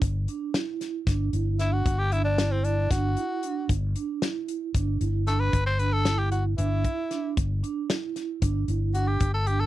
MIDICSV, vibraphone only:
0, 0, Header, 1, 2, 480
1, 0, Start_track
1, 0, Key_signature, 1, "major"
1, 0, Tempo, 524934
1, 16, Time_signature, 7, 3, 24, 8
1, 8836, End_track
2, 0, Start_track
2, 0, Title_t, "Vibraphone"
2, 0, Program_c, 0, 11
2, 261, Note_on_c, 0, 62, 61
2, 458, Note_off_c, 0, 62, 0
2, 498, Note_on_c, 0, 64, 78
2, 895, Note_off_c, 0, 64, 0
2, 979, Note_on_c, 0, 62, 73
2, 1177, Note_off_c, 0, 62, 0
2, 1218, Note_on_c, 0, 64, 68
2, 1416, Note_off_c, 0, 64, 0
2, 1461, Note_on_c, 0, 62, 69
2, 1658, Note_off_c, 0, 62, 0
2, 1943, Note_on_c, 0, 62, 72
2, 2139, Note_off_c, 0, 62, 0
2, 2185, Note_on_c, 0, 64, 75
2, 2579, Note_off_c, 0, 64, 0
2, 2662, Note_on_c, 0, 62, 76
2, 2859, Note_off_c, 0, 62, 0
2, 2903, Note_on_c, 0, 64, 69
2, 3100, Note_off_c, 0, 64, 0
2, 3146, Note_on_c, 0, 62, 72
2, 3342, Note_off_c, 0, 62, 0
2, 3621, Note_on_c, 0, 62, 70
2, 3818, Note_off_c, 0, 62, 0
2, 3863, Note_on_c, 0, 64, 81
2, 4258, Note_off_c, 0, 64, 0
2, 4342, Note_on_c, 0, 62, 72
2, 4539, Note_off_c, 0, 62, 0
2, 4579, Note_on_c, 0, 64, 63
2, 4777, Note_off_c, 0, 64, 0
2, 4822, Note_on_c, 0, 62, 74
2, 5019, Note_off_c, 0, 62, 0
2, 5302, Note_on_c, 0, 62, 68
2, 5499, Note_off_c, 0, 62, 0
2, 5543, Note_on_c, 0, 64, 70
2, 5938, Note_off_c, 0, 64, 0
2, 6020, Note_on_c, 0, 62, 73
2, 6218, Note_off_c, 0, 62, 0
2, 6259, Note_on_c, 0, 64, 64
2, 6457, Note_off_c, 0, 64, 0
2, 6499, Note_on_c, 0, 62, 74
2, 6697, Note_off_c, 0, 62, 0
2, 6980, Note_on_c, 0, 62, 72
2, 7178, Note_off_c, 0, 62, 0
2, 7219, Note_on_c, 0, 64, 74
2, 7616, Note_off_c, 0, 64, 0
2, 7697, Note_on_c, 0, 62, 77
2, 7896, Note_off_c, 0, 62, 0
2, 7937, Note_on_c, 0, 64, 61
2, 8136, Note_off_c, 0, 64, 0
2, 8178, Note_on_c, 0, 62, 70
2, 8377, Note_off_c, 0, 62, 0
2, 8662, Note_on_c, 0, 62, 68
2, 8836, Note_off_c, 0, 62, 0
2, 8836, End_track
0, 0, End_of_file